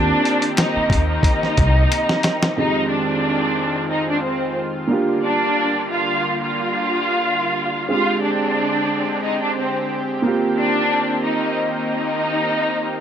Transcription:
0.00 0.10 D#2 loud
0.00 2.55 D#3 medium
0.00 2.19 A#3 medium
0.00 2.55 A#3 medium
0.00 2.20 C4 medium
0.00 2.53 C4 medium
0.00 0.53 D4 loud
0.00 2.21 F4 medium
0.00 2.22 G4 medium
0.00 2.53 G4 medium
0.00 0.54 D5 medium
0.25 closed hi-hat medium
0.42 closed hi-hat medium
0.57 1.06 D#4 medium
0.57 1.06 D#5 medium
0.57 finger snap medium
0.57 snare loud
0.57 closed hi-hat medium
0.76 muted upright bass stroke soft
0.90 1.17 D#2 medium
0.90 kick medium
0.90 closed hi-hat medium
1.09 2.53 D#4 medium
1.09 2.53 D#5 medium
1.23 kick loud
1.23 closed hi-hat loud
1.43 snare soft
1.57 1.84 C2 medium
1.57 kick medium
1.57 closed hi-hat medium
1.92 finger snap medium
1.92 closed hi-hat loud
2.09 snare medium
2.23 snare loud
2.23 closed hi-hat medium
2.43 snare loud
2.57 4.86 F2 medium
2.57 4.88 D#3 medium
2.57 4.88 G#3 medium
2.57 4.87 G#3 medium
2.57 4.88 C4 medium
2.57 2.88 D#4 loud
2.57 7.87 F4 medium
2.57 2.88 D#5 medium
2.61 4.88 D#3 medium
2.61 4.89 G4 medium
2.90 3.86 D4 medium
2.90 3.87 D5 medium
3.90 4.07 D#4 medium
3.90 4.07 D#5 medium
4.10 4.23 D4 medium
4.10 4.23 D5 medium
4.23 4.54 C4 medium
4.23 4.54 C5 medium
4.87 7.87 D3 medium
4.87 7.87 G3 medium
4.87 7.52 A#3 medium
4.87 7.87 A#3 medium
4.87 7.53 D4 medium
4.87 7.54 F4 medium
4.93 7.54 G4 medium
5.24 5.87 D4 loud
5.24 5.87 D5 medium
5.91 6.39 F4 medium
5.91 6.40 F5 medium
6.42 7.87 F4 medium
6.42 7.87 F5 medium
7.89 10.21 D3 medium
7.89 10.19 G#3 medium
7.89 10.21 G#3 medium
7.89 13.00 C4 medium
7.89 10.20 C4 medium
7.89 10.21 D4 medium
7.89 8.21 F4 loud
7.89 13.00 G4 medium
7.89 8.21 F5 medium
7.94 10.22 G4 medium
8.23 9.19 D4 medium
8.23 9.20 D5 medium
9.23 9.40 D#4 medium
9.23 9.40 D#5 medium
9.42 9.56 D4 medium
9.42 9.56 D5 medium
9.57 9.87 C4 medium
9.57 9.88 C5 medium
10.22 13.00 D#3 medium
10.22 12.86 A#3 medium
10.22 13.00 A#3 medium
10.22 12.87 C4 medium
10.22 12.88 F4 medium
10.28 12.89 G4 medium
10.57 11.20 D4 loud
10.57 11.20 D5 medium
11.24 11.73 D#4 medium
11.24 11.73 D#5 medium
11.75 13.00 D#4 medium
11.75 13.00 D#5 medium

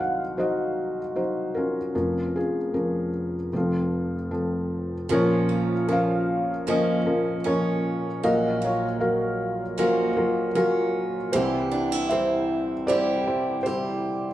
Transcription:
0.00 1.90 C2 soft
0.00 1.90 D#3 soft
0.00 0.37 F#3 medium
0.00 0.38 D#4 soft
0.00 0.35 F#4 medium
0.00 0.38 C5 medium
0.00 0.39 D#5 medium
0.00 1.95 F5 medium
0.00 0.35 F#5 medium
0.37 0.99 F#3 medium
0.37 0.99 D#4 soft
0.37 1.92 F#4 medium
0.37 0.99 C5 medium
0.37 1.19 D#5 medium
1.15 1.77 F#3 medium
1.15 1.77 D#4 soft
1.15 1.77 C5 medium
1.55 1.93 C#4 soft
1.55 2.36 F4 soft
1.55 1.94 A#4 medium
1.95 3.48 F1 soft
1.95 3.48 F2 soft
1.95 2.56 F3 soft
1.95 2.36 C#4 soft
1.95 2.56 A#4 medium
2.36 2.72 C#4 soft
2.36 3.50 F4 soft
2.36 3.09 G#4 medium
2.74 3.35 F3 medium
2.74 3.35 C#4 soft
2.74 3.35 A#4 medium
3.53 5.07 F1 soft
3.53 5.07 F2 soft
3.53 4.15 F3 soft
3.53 3.55 C4 soft
3.53 4.30 C4 medium
3.53 5.08 F4 medium
3.53 4.15 A4 medium
4.31 4.93 F3 soft
4.31 4.93 C4 soft
4.31 4.93 A4 medium
5.09 8.19 A#1 soft
5.09 8.20 A#2 soft
5.09 5.88 F3 medium
5.09 5.72 F3 medium
5.09 6.68 C#4 medium
5.09 5.72 C#4 medium
5.09 5.73 A#4 medium
5.13 6.65 F4 medium
5.13 5.93 C#5 medium
5.49 6.67 A#3 soft
5.88 6.50 F3 medium
5.88 6.67 F3 soft
5.88 6.50 C#4 medium
5.88 6.50 A#4 medium
5.93 6.65 F5 medium
6.67 8.23 F3 soft
6.67 6.98 F3 medium
6.67 8.31 A#3 soft
6.67 6.98 C#4 medium
6.67 7.43 C#4 medium
6.67 6.98 A#4 medium
6.67 7.48 D#5 medium
7.06 7.37 F3 medium
7.06 7.37 C#4 soft
7.06 7.37 A#4 medium
7.44 8.07 F3 medium
7.44 8.22 C#4 medium
7.44 8.06 C#4 medium
7.44 8.06 A#4 medium
7.44 8.19 C#5 medium
8.23 11.29 A#1 soft
8.23 11.29 A#2 medium
8.23 8.84 F#3 medium
8.23 9.78 C#4 medium
8.23 9.75 F#4 medium
8.23 8.84 A#4 medium
8.23 8.63 D#5 medium
8.23 8.84 F5 medium
8.62 9.77 A#3 soft
8.62 10.14 C#5 medium
8.67 9.77 F4 soft
9.00 9.61 F#3 medium
9.00 9.62 A#4 medium
9.00 9.61 F5 medium
9.78 11.33 F3 medium
9.78 10.09 F#3 medium
9.78 11.41 A#3 soft
9.78 10.54 C#4 medium
9.78 10.09 F4 medium
9.78 10.09 A#4 medium
10.17 10.47 F#3 medium
10.17 10.47 F4 medium
10.17 10.47 A#4 medium
10.55 11.16 F#3 medium
10.55 11.41 C#4 medium
10.55 11.16 F4 medium
10.55 11.17 A#4 medium
11.32 14.34 C2 medium
11.32 14.34 C3 medium
11.32 14.34 E3 medium
11.32 11.95 G3 medium
11.32 12.10 E4 medium
11.32 12.88 G4 medium
11.32 12.06 C5 medium
11.72 11.92 D4 soft
11.92 12.88 E4 soft
12.09 12.72 G3 medium
12.09 12.87 C4 medium
12.09 12.72 E4 medium
12.09 12.72 C5 medium
12.09 12.90 E5 medium
12.87 13.18 G3 medium
12.87 14.34 C4 soft
12.87 13.18 E4 medium
12.87 14.34 E4 medium
12.87 13.65 G4 medium
12.87 13.18 C5 medium
12.87 13.61 D5 medium
12.92 14.34 G4 medium
13.27 13.57 G3 medium
13.27 13.57 E4 medium
13.27 13.58 C5 medium
13.63 14.27 G3 medium
13.63 14.27 E4 medium
13.63 14.34 G4 medium
13.63 13.65 C5 medium
13.63 14.27 C5 medium

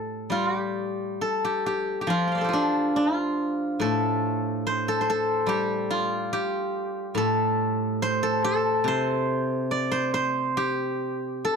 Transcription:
0.00 1.19 A2 soft
0.00 0.31 G4 medium
0.00 1.21 A4 soft
0.30 2.95 G3 medium
0.30 0.57 F4 medium
0.57 1.44 G4 medium
1.21 2.41 A4 medium
1.45 1.66 G4 medium
1.66 2.01 G4 medium
2.01 2.44 G4 medium
2.07 4.64 F3 medium
2.07 2.48 F4 medium
2.28 3.83 G5 soft
2.32 4.20 D5 soft
2.32 3.99 F5 soft
2.38 3.81 A4 soft
2.38 4.36 C5 soft
2.44 4.80 G4 soft
2.49 2.96 F4 medium
2.53 5.33 D4 medium
2.96 5.49 F4 medium
3.80 6.30 A2 medium
3.80 4.88 A4 medium
4.67 5.01 C5 medium
4.88 5.09 A4 medium
5.01 6.99 C5 medium
5.10 7.17 A4 medium
5.46 7.98 G3 medium
5.46 6.32 G4 medium
5.91 8.43 F4 medium
6.33 8.68 G4 medium
7.15 8.84 A2 medium
7.15 8.22 A4 medium
8.02 8.87 C5 loud
8.23 8.44 A4 medium
8.44 10.64 A4 medium
8.84 11.43 C3 medium
8.84 9.91 C5 loud
9.71 11.56 D5 medium
9.92 10.13 C5 medium
10.14 11.56 C5 medium
10.57 11.56 G4 medium
11.45 11.56 A4 medium

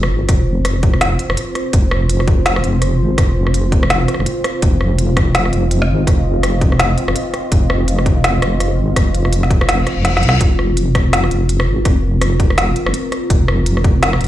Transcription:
0.00 0.12 F1 medium
0.00 14.28 C4 medium
0.00 14.28 F4 medium
0.00 4.83 C5 medium
0.00 cross-stick medium
0.10 0.27 G#1 loud
0.29 1.18 F1 loud
0.29 kick loud
0.29 cross-stick medium
0.29 closed hi-hat medium
0.65 cross-stick medium
0.65 closed hi-hat medium
0.83 kick loud
0.83 closed hi-hat soft
0.94 cross-stick soft
1.01 snare loud
1.01 closed hi-hat medium
1.19 closed hi-hat soft
1.29 1.36 F1 medium
1.29 cross-stick medium
1.37 closed hi-hat medium
1.55 cross-stick medium
1.55 closed hi-hat soft
1.73 2.63 F1 loud
1.73 kick loud
1.73 closed hi-hat medium
1.91 cross-stick medium
2.09 closed hi-hat medium
2.20 cross-stick medium
2.28 kick loud
2.28 closed hi-hat soft
2.46 snare loud
2.46 closed hi-hat medium
2.56 cross-stick medium
2.64 3.01 F1 medium
2.64 closed hi-hat soft
2.82 cross-stick medium
2.82 closed hi-hat medium
3.00 3.17 G#1 loud
3.18 4.07 F1 loud
3.18 kick loud
3.18 cross-stick medium
3.18 closed hi-hat medium
3.47 cross-stick soft
3.54 closed hi-hat medium
3.72 kick loud
3.72 closed hi-hat soft
3.83 cross-stick medium
3.90 snare loud
3.90 closed hi-hat medium
4.08 cross-stick soft
4.08 closed hi-hat soft
4.14 cross-stick soft
4.19 4.26 F1 medium
4.19 cross-stick soft
4.26 closed hi-hat medium
4.44 cross-stick medium
4.44 closed hi-hat soft
4.62 5.52 F1 loud
4.62 kick loud
4.62 closed hi-hat medium
4.81 10.61 D#5 medium
4.81 cross-stick medium
4.99 closed hi-hat medium
5.17 kick loud
5.17 cross-stick medium
5.17 closed hi-hat soft
5.35 snare loud
5.35 closed hi-hat medium
5.45 cross-stick soft
5.53 5.90 F1 medium
5.53 closed hi-hat soft
5.71 closed hi-hat medium
5.82 cross-stick medium
5.89 6.06 G#1 loud
6.07 6.97 F1 loud
6.07 kick loud
6.07 cross-stick soft
6.07 closed hi-hat medium
6.43 cross-stick medium
6.43 closed hi-hat medium
6.61 kick loud
6.61 closed hi-hat soft
6.72 cross-stick medium
6.79 snare loud
6.79 closed hi-hat medium
6.98 closed hi-hat soft
7.08 7.15 F1 medium
7.08 cross-stick medium
7.16 closed hi-hat medium
7.34 cross-stick medium
7.34 closed hi-hat soft
7.52 8.41 F1 loud
7.52 kick loud
7.52 closed hi-hat medium
7.70 cross-stick medium
7.88 closed hi-hat medium
7.99 cross-stick medium
8.06 kick loud
8.06 closed hi-hat soft
8.24 snare loud
8.24 closed hi-hat medium
8.42 8.79 F1 medium
8.42 cross-stick medium
8.42 closed hi-hat soft
8.60 cross-stick medium
8.60 closed hi-hat medium
8.78 8.95 G#1 loud
8.96 9.86 F1 loud
8.96 kick loud
8.96 cross-stick medium
8.96 closed hi-hat medium
9.15 closed hi-hat soft
9.25 cross-stick medium
9.33 closed hi-hat medium
9.43 snare soft
9.50 kick loud
9.50 closed hi-hat soft
9.61 cross-stick medium
9.69 snare loud
9.69 closed hi-hat medium
9.69 reverse cymbal medium
9.87 cross-stick medium
9.87 closed hi-hat soft
9.97 10.24 F1 medium
10.05 snare medium
10.05 closed hi-hat medium
10.17 snare medium
10.22 10.40 C2 medium
10.22 closed hi-hat soft
10.29 snare loud
10.41 11.30 F1 loud
10.41 kick loud
10.41 closed hi-hat medium
10.59 cross-stick medium
10.75 14.28 A#4 medium
10.75 closed hi-hat medium
10.95 kick loud
10.95 cross-stick medium
10.95 closed hi-hat soft
11.13 snare loud
11.13 closed hi-hat medium
11.24 cross-stick medium
11.31 11.69 F1 medium
11.31 closed hi-hat soft
11.49 closed hi-hat medium
11.60 cross-stick medium
11.67 11.84 G#1 loud
11.85 12.75 F1 loud
11.85 kick loud
11.85 cross-stick soft
11.85 closed hi-hat medium
12.21 cross-stick medium
12.21 closed hi-hat medium
12.40 kick loud
12.40 closed hi-hat soft
12.50 cross-stick medium
12.58 snare loud
12.58 closed hi-hat medium
12.76 closed hi-hat soft
12.86 12.93 F1 medium
12.86 cross-stick medium
12.94 closed hi-hat medium
13.12 cross-stick medium
13.12 closed hi-hat soft
13.30 14.20 F1 loud
13.30 kick loud
13.30 closed hi-hat medium
13.48 cross-stick medium
13.66 closed hi-hat medium
13.77 cross-stick medium
13.84 kick loud
13.84 closed hi-hat soft
14.03 snare loud
14.03 closed hi-hat medium
14.13 cross-stick medium
14.20 14.28 F1 medium
14.20 closed hi-hat soft
14.24 closed hi-hat soft

